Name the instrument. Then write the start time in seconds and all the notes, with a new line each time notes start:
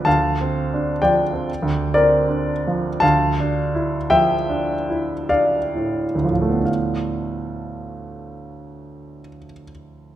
grand piano
0.05 D2 F5 A5
0.41 C4
0.74 D4
1.02 F3 D5 G5
1.33 C4
1.62 D2
1.94 C4 A#4 D5
2.29 D4
2.67 F3
3.00 D2 F5 A5
3.40 D4
3.75 E4
4.10 F3 E5 G5
4.49 D4
4.90 E4
5.29 D4 D5 F5
5.75 A2
6.15 D2
6.24 A2 F3
6.33 F3
6.41 A3
6.49 B3
6.59 D4
6.65 F5